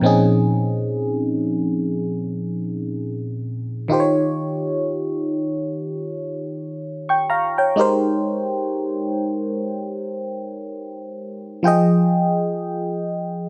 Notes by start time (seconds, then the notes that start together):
0.01 A#2 F3 C4 C#4 D#4
0.06 G#4
3.88 D#3 D#4 F4 G4
3.93 C5
4.00 C#5
7.09 G5 C#6
7.30 F5 A#5
7.58 C#5 G5
7.76 G#3 D#4 G4 A#4
7.81 C5
11.63 F3 F4 G#4 G5
11.68 D#5